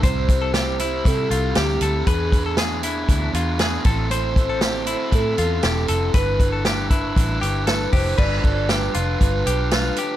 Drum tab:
CC |--------|--------|--------|--------|
HH |xxxxxxxx|xxxxxxxx|xxxxxxxx|xxxxxxxo|
SD |--o---o-|--o---o-|--o---o-|--o---o-|
BD |oo--o---|oo--o--o|-o--o---|oo-oo--o|

CC |x-------|
HH |-xxxxxxx|
SD |--o---o-|
BD |oo--o---|